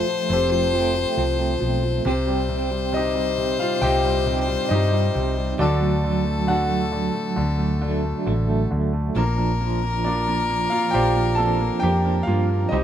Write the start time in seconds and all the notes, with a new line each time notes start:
Already playing: F3 A3 F4 G4 A4 C5 F5 G5 A5
0.07 F3
0.29 F1 C4 G4 A4 C5
0.51 F3
0.73 F3 A3 C4 G4
0.94 F3
1.17 C2 F3 C4
1.39 F3
1.60 B1 F3
1.82 F3
2.05 C2 C3 C4 G4 C5
2.27 G3
2.49 C3 C4
2.71 G3
2.92 C3 D#5
2.96 D#4 G4
3.15 G3
3.38 C3
3.59 G3 F4 F5
3.82 C2 C3 G4 C5 D#5 G5
4.04 G3
4.26 C3 C4 D#4 G4
4.48 G3
4.69 G2 C3 D#4 G4 D#5
4.92 G3
5.15 C2 C3
5.37 G3
5.59 D2 D3 F#3 D4 F#4 A4 D5
5.82 A3
6.03 D3 F#3
6.25 A3
6.47 D3 F#4 A4 F#5
6.69 A3
6.92 D3
7.14 A3
7.36 D2 D3
7.58 A3
7.81 D3 F#3 A3 D4
8.04 A3
8.26 A1 D3 A3
8.49 A3
8.71 D2 D3
8.93 A3
9.15 A#1 F3 A#3 D4 A#4
9.38 A#3
9.61 F3 A#3
9.84 A#3
10.05 A#3 D4 F4 D5
10.28 A#3
10.50 A#3
10.70 A#3 F4 F5
10.91 A#1 F4 G4 C5 D5 G5
11.16 A#3
11.35 A4 A5
11.39 F3 A#3 C4 D4
11.61 A#3
11.80 F2 A#3 G4 G5
11.84 C4
12.06 A#3
12.23 F5
12.27 G2 A#3 F4
12.49 A#3
12.69 C2 G3 C4 D#4 D#5
12.73 D#4 G4